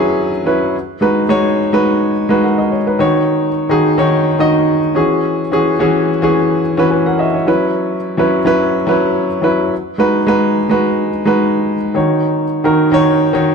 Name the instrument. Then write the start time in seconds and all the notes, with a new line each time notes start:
grand piano
Already playing: F#3 C#4 E4 G#4 B4
0.45 F#3 C#4 E4 B4
1.01 G#3 D#4 F#4 B4
1.29 G#3 D#4 F#4 C#5
1.73 G#3 D#4 F#4 B4
2.29 G#3 D#4 F#4 B4
2.43 A#4 F#5
2.58 F#4 D#5
2.71 C#5
2.87 D#4 B4
2.99 D#3 D#4 F#4 C#5
3.69 D#3 D#4 F#4 G#4
3.98 D#3 D#4 F#4 C#5
4.39 D#3 D#4 F#4 D#5
4.95 E3 C#4 F#4 G#4
5.52 E3 C#4 F#4 G#4
5.79 E3 C#4 F#4 G#4
6.22 E3 C#4 F#4 G#4
6.77 E3 C#4 F#4 B4
6.90 B4 G#5
7.06 A#4 F#5
7.19 F#4 D#5 E5
7.34 E4 C#5
7.47 F#3 C#4 E4 B4
8.17 F#3 C#4 E4 B4
8.45 F#3 C#4 E4 B4
8.87 F#3 C#4 E4 B4
9.42 F#3 C#4 E4 B4
9.98 G#3 D#4 F#4 B4
10.27 G#3 D#4 F#4 B4
10.69 G#3 D#4 F#4 B4
11.25 G#3 D#4 F#4 B4
11.94 D#3 D#4 F#4 C#5
12.64 D#3 D#4 F#4 A#4
12.92 D#3 D#4 F#4 C#5
13.33 D#3 D#4 F#4 C#5